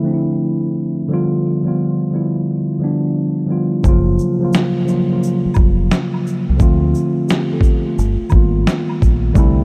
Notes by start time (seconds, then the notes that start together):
Already playing: D3 F3 A3 C4 E4
0.02 D3 F3 A3 C4
0.07 D4
0.14 E4
1.08 D3 F3 G3
1.12 B3 F4
1.63 D3 F3 G3
1.67 B3 F4
2.10 D3 F3 G3
2.14 B3 E4
2.79 D3 F3 G3
2.83 B3 D4
3.46 D3 F3 G3
3.50 B3 F4
3.83 F#1 C#3 F3 F#3, kick, shaker
3.87 A#3 F4
4.19 shaker
4.39 C#3 F3 F#3
4.43 A#3 F4
4.53 snare, shaker
4.85 C#3 F3 F#3 A#3, shaker
4.90 F4
5.08 C#3 F3 F#3
5.12 A#3 F4
5.23 shaker
5.46 muted fingered electric bass stroke
5.54 F1, kick, high woodblock, shaker
5.91 snare, shaker
6.14 high woodblock
6.27 shaker
6.49 C2
6.57 D2 D3 F3 A3 C4, kick, shaker
6.62 F4
6.95 shaker
7.28 B3 G4, snare, shaker
7.53 C4 A4
7.61 kick, shaker
7.86 A3 F4
7.99 G1, shaker
8.29 G#1 D#3 G3 A#3, kick, high woodblock, shaker
8.33 B3 F4
8.67 snare, shaker
8.89 high woodblock
9.02 A#1, kick, shaker
9.33 C2 D3 G3 A3 C4, kick, shaker
9.39 E4